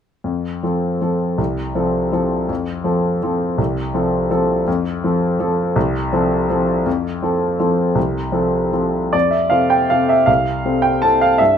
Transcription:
0.24 0.62 F2 soft
0.63 0.98 F3 soft
0.63 0.98 C4 soft
0.63 0.98 A4 soft
1.01 1.35 F3 soft
1.01 1.35 C4 soft
1.01 1.35 A4 soft
1.38 1.74 C2 soft
1.75 2.09 F3 soft
1.75 2.09 C4 soft
1.75 2.10 A4 soft
2.12 2.45 F3 soft
2.12 2.46 C4 soft
2.12 2.46 A4 soft
2.49 2.84 F2 soft
2.84 3.18 F3 soft
2.84 3.19 C4 soft
2.84 3.19 A4 soft
3.23 3.55 F3 soft
3.23 3.55 C4 soft
3.23 3.56 A4 soft
3.58 3.93 C2 soft
3.94 4.27 F3 soft
3.94 4.27 C4 soft
3.94 4.28 A4 soft
4.31 4.63 F3 soft
4.31 4.63 C4 soft
4.31 4.63 A4 soft
4.68 5.02 F2 medium
5.04 5.37 F3 soft
5.04 5.37 C4 soft
5.04 5.37 A4 soft
5.40 5.72 F3 soft
5.40 5.72 C4 soft
5.40 5.72 A4 soft
5.76 6.11 C2 medium
6.13 6.46 F3 soft
6.13 6.46 C4 soft
6.13 6.46 A4 soft
6.50 6.83 F3 soft
6.50 6.83 C4 soft
6.50 6.83 A4 soft
6.86 7.21 F2 medium
7.22 7.56 F3 soft
7.22 7.56 C4 soft
7.22 7.56 A4 soft
7.60 7.92 F3 soft
7.60 7.93 C4 soft
7.60 7.93 A4 soft
7.95 8.31 C2 soft
8.32 8.69 F3 soft
8.32 8.69 C4 soft
8.32 8.69 A4 soft
8.73 9.10 F3 soft
8.73 9.10 C4 soft
8.73 9.10 A4 soft
9.13 9.51 F2 soft
9.13 9.32 D5 medium
9.31 9.51 E5 soft
9.50 9.86 C3 soft
9.50 9.86 C4 soft
9.50 9.87 A4 soft
9.50 9.70 F5 medium
9.70 9.90 G5 medium
9.90 10.25 C3 soft
9.90 10.25 C4 soft
9.90 10.25 A4 soft
9.90 10.09 F5 medium
10.09 10.28 E5 medium
10.26 10.63 C2 soft
10.26 10.83 F5 medium
10.65 10.99 C3 soft
10.65 11.00 C4 soft
10.65 11.00 A4 soft
10.82 11.02 G5 medium
11.02 11.36 C3 soft
11.02 11.36 C4 soft
11.02 11.37 A4 soft
11.02 11.21 A5 medium
11.21 11.40 F5 medium
11.38 11.58 G2 soft
11.38 11.57 E5 medium

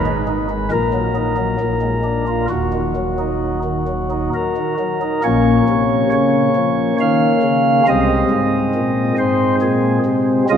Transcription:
0.00 0.69 G#1 medium
0.00 0.69 G#2 medium
0.00 0.69 B4 loud
0.06 0.26 G#3 medium
0.28 0.47 D#4 medium
0.50 0.68 G#3 medium
0.71 1.57 A#1 medium
0.71 1.57 A#2 medium
0.71 2.46 A#4 loud
0.94 1.13 F#3 medium
1.16 1.35 D#4 medium
1.37 1.56 F#3 medium
1.60 2.47 A#1 medium
1.60 2.47 A#2 medium
1.81 2.02 G#3 soft
2.04 2.24 D4 medium
2.28 2.47 F4 soft
2.50 4.28 D#1 medium
2.50 4.29 D#2 medium
2.50 4.74 F#4 medium
2.73 2.93 D#3 soft
2.96 3.16 F#3 soft
3.19 3.59 D#4 soft
3.64 3.85 D#3 soft
3.88 4.08 F#3 soft
4.11 4.30 D#4 soft
4.34 5.22 A#4 medium
4.57 4.77 D#3 soft
4.79 4.99 F#3 soft
5.02 5.21 D#4 soft
5.24 5.62 A#1 medium
5.24 5.61 A#2 medium
5.24 7.83 A#3 soft
5.24 7.83 C#4 soft
5.24 6.09 C#5 loud
5.69 6.06 C3 medium
6.12 6.49 C#3 medium
6.12 6.97 C#5 medium
6.56 6.93 F3 medium
7.00 7.37 D#3 medium
7.00 7.85 F5 loud
7.43 7.80 C#3 medium
7.88 8.25 C2 medium
7.88 8.25 C3 medium
7.88 10.45 G#3 soft
7.88 10.45 C4 soft
7.88 9.15 D#5 loud
8.30 8.68 G#2 medium
8.75 9.12 A#2 medium
9.18 9.55 G#2 medium
9.18 9.55 C5 medium
9.61 9.99 A#2 medium
9.61 9.98 G#4 medium
10.06 10.43 C3 medium
10.50 10.57 C#2 medium
10.50 10.57 C#3 medium
10.50 10.57 G#3 soft
10.50 10.57 F4 soft
10.50 10.57 D#5 loud

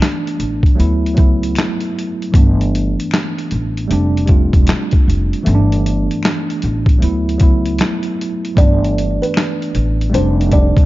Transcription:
0.00 0.68 E3 medium
0.00 0.69 A3 medium
0.00 0.70 B3 medium
0.00 0.71 D4 loud
0.00 finger snap medium
0.00 snare loud
0.00 closed hi-hat medium
0.27 closed hi-hat soft
0.40 0.76 A1 medium
0.40 closed hi-hat medium
0.63 kick medium
0.63 closed hi-hat soft
0.75 1.15 D2 medium
0.75 1.13 F#3 medium
0.75 1.14 A3 medium
0.75 1.15 B3 medium
0.80 1.16 E4 medium
0.80 closed hi-hat medium
1.06 closed hi-hat soft
1.14 2.26 F#3 medium
1.14 2.27 A3 medium
1.14 2.28 B3 medium
1.14 kick medium
1.14 closed hi-hat medium
1.18 1.54 C#2 medium
1.18 2.29 E4 medium
1.43 closed hi-hat medium
1.55 finger snap medium
1.55 snare loud
1.55 closed hi-hat medium
1.60 finger snap medium
1.81 closed hi-hat soft
1.99 closed hi-hat medium
2.22 closed hi-hat soft
2.32 2.94 G1 loud
2.32 3.81 E3 medium
2.32 3.81 A3 medium
2.32 3.82 B3 medium
2.32 kick loud
2.32 closed hi-hat medium
2.37 3.83 D4 medium
2.61 closed hi-hat soft
2.75 closed hi-hat medium
3.00 closed hi-hat soft
3.11 finger snap medium
3.11 snare loud
3.11 closed hi-hat medium
3.15 finger snap medium
3.38 closed hi-hat soft
3.51 3.88 A1 medium
3.51 closed hi-hat medium
3.77 closed hi-hat soft
3.88 4.50 F1 loud
3.88 4.25 G3 medium
3.88 4.26 A3 medium
3.88 4.27 C4 medium
3.88 closed hi-hat medium
3.92 4.28 D4 medium
4.17 closed hi-hat soft
4.26 5.38 G3 medium
4.26 5.39 A3 medium
4.26 5.40 C4 medium
4.26 kick medium
4.26 closed hi-hat medium
4.31 5.40 F4 medium
4.53 4.67 E1 medium
4.53 kick medium
4.53 closed hi-hat medium
4.67 finger snap medium
4.67 snare loud
4.67 closed hi-hat medium
4.70 finger snap medium
4.91 kick medium
4.91 closed hi-hat soft
5.08 5.30 F1 medium
5.08 closed hi-hat medium
5.33 closed hi-hat soft
5.43 6.06 G1 loud
5.43 6.92 E3 medium
5.43 6.93 A3 medium
5.43 6.93 B3 medium
5.43 closed hi-hat medium
5.48 5.55 C#4 medium
5.55 6.98 D4 loud
5.72 closed hi-hat soft
5.86 closed hi-hat medium
6.11 closed hi-hat soft
6.23 finger snap medium
6.23 snare loud
6.23 closed hi-hat medium
6.26 finger snap medium
6.50 closed hi-hat soft
6.62 6.99 A1 medium
6.62 closed hi-hat medium
6.86 kick medium
6.86 closed hi-hat soft
6.98 7.37 F#3 medium
6.98 7.38 A3 medium
6.98 7.38 B3 medium
6.98 closed hi-hat medium
7.03 7.38 D2 medium
7.03 7.39 E4 medium
7.29 closed hi-hat soft
7.38 7.77 C#2 medium
7.38 8.50 F#3 medium
7.38 8.51 A3 medium
7.38 8.51 B3 medium
7.38 kick medium
7.38 closed hi-hat medium
7.43 8.52 E4 medium
7.66 closed hi-hat medium
7.79 finger snap medium
7.79 snare loud
7.79 closed hi-hat medium
7.82 finger snap medium
8.03 closed hi-hat medium
8.21 closed hi-hat medium
8.45 closed hi-hat soft
8.55 9.17 G1 loud
8.55 10.04 E3 medium
8.55 10.05 A3 medium
8.55 10.05 B3 medium
8.55 9.18 D5 medium
8.55 kick loud
8.55 closed hi-hat medium
8.60 10.06 D4 medium
8.84 closed hi-hat soft
8.98 closed hi-hat medium
9.22 10.09 B4 medium
9.22 closed hi-hat soft
9.34 finger snap medium
9.34 snare loud
9.38 finger snap medium
9.38 closed hi-hat medium
9.62 closed hi-hat soft
9.75 10.11 A1 medium
9.75 closed hi-hat medium
10.01 closed hi-hat soft
10.10 10.48 G3 medium
10.10 10.49 A3 medium
10.10 10.50 C4 medium
10.14 10.73 F1 medium
10.14 10.51 D4 medium
10.14 10.49 C5 medium
10.14 closed hi-hat medium
10.41 closed hi-hat soft
10.49 10.86 G3 medium
10.49 10.86 A3 medium
10.49 10.86 C4 medium
10.49 kick medium
10.49 closed hi-hat medium
10.53 10.86 D4 medium
10.53 10.86 D5 medium
10.77 10.86 E1 medium
10.77 kick medium
10.77 closed hi-hat medium

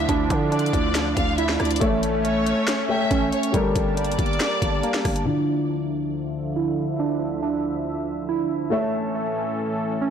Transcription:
0.00 1.77 D3 medium
0.00 1.78 D3 medium
0.00 1.78 F3 medium
0.00 1.77 D4 medium
0.00 1.78 D4 medium
0.00 1.37 E4 medium
0.00 1.78 F4 medium
0.09 0.29 D2 loud
0.09 0.51 D4 loud
0.09 kick loud
0.09 closed hi-hat medium
0.30 0.72 D3 loud
0.30 kick medium
0.30 closed hi-hat medium
0.52 1.81 D4 medium
0.52 1.13 D5 medium
0.52 closed hi-hat soft
0.59 closed hi-hat medium
0.66 closed hi-hat medium
0.73 1.15 D2 loud
0.73 kick loud
0.73 closed hi-hat medium
0.94 finger snap medium
0.94 snare loud
0.94 closed hi-hat medium
1.17 1.58 D2 loud
1.17 1.37 F5 loud
1.17 kick loud
1.17 closed hi-hat medium
1.38 1.81 E4 medium
1.38 1.59 E5 medium
1.38 closed hi-hat medium
1.48 finger snap medium
1.48 snare medium
1.60 1.81 D2 loud
1.60 1.80 D5 medium
1.60 cross-stick medium
1.60 closed hi-hat medium
1.65 closed hi-hat medium
1.71 closed hi-hat medium
1.76 2.86 A3 medium
1.76 closed hi-hat medium
1.81 2.54 A1 loud
1.81 2.23 A3 loud
1.81 3.52 A3 medium
1.81 3.52 C#4 medium
1.81 2.87 A4 medium
1.81 2.87 C#5 medium
1.81 2.88 E5 medium
1.81 kick loud
1.81 closed hi-hat medium
2.03 closed hi-hat medium
2.24 3.54 A3 medium
2.24 2.85 C#5 loud
2.24 closed hi-hat medium
2.47 closed hi-hat medium
2.67 finger snap medium
2.67 snare loud
2.67 closed hi-hat medium
2.89 3.54 A3 medium
2.89 3.53 A4 medium
2.89 3.54 C#5 medium
2.89 3.30 E5 medium
2.89 3.54 G5 medium
3.11 3.32 A1 loud
3.11 3.54 C#4 medium
3.11 kick medium
3.11 closed hi-hat medium
3.32 3.53 C#5 medium
3.32 closed hi-hat medium
3.43 closed hi-hat medium
3.52 3.75 G1 loud
3.52 5.22 G3 medium
3.52 3.96 G3 loud
3.52 5.25 G3 medium
3.52 5.25 A#3 loud
3.52 5.25 D4 medium
3.52 5.23 G4 medium
3.52 5.23 A4 medium
3.52 5.24 A#4 medium
3.52 5.25 A5 medium
3.52 kick loud
3.52 closed hi-hat medium
3.76 4.17 G1 loud
3.76 kick loud
3.76 closed hi-hat medium
3.97 5.27 G3 medium
3.97 5.23 D5 medium
3.97 closed hi-hat medium
4.04 closed hi-hat medium
4.12 closed hi-hat medium
4.19 4.39 G1 loud
4.19 kick loud
4.19 closed hi-hat medium
4.26 closed hi-hat medium
4.33 closed hi-hat soft
4.40 finger snap medium
4.40 snare loud
4.40 closed hi-hat medium
4.62 4.83 G1 loud
4.62 kick loud
4.62 closed hi-hat medium
4.83 5.27 A#3 medium
4.83 closed hi-hat medium
4.94 finger snap medium
4.94 snare loud
5.05 5.26 G1 loud
5.05 kick medium
5.05 cross-stick medium
5.05 closed hi-hat medium
5.05 open hi-hat loud
5.16 closed hi-hat medium
5.25 8.68 D2 medium
5.25 8.67 D3 medium
5.25 8.69 D3 medium
5.25 8.69 F3 medium
5.25 8.68 D4 medium
5.25 5.69 D4 loud
5.25 8.68 E4 medium
5.25 8.69 F4 medium
5.25 8.69 E5 medium
5.70 6.98 D4 medium
6.56 8.28 E4 medium
6.99 7.41 D4 medium
7.42 8.72 D4 medium
8.29 8.72 E4 medium
8.70 10.10 A2 medium
8.70 10.10 E3 medium
8.70 10.10 A3 medium
8.70 9.14 A3 loud
8.70 10.10 C#4 medium
8.70 10.10 A4 medium
8.70 10.10 C#5 medium
8.70 10.10 E5 medium
9.15 10.10 A3 medium
10.01 10.10 C#4 medium

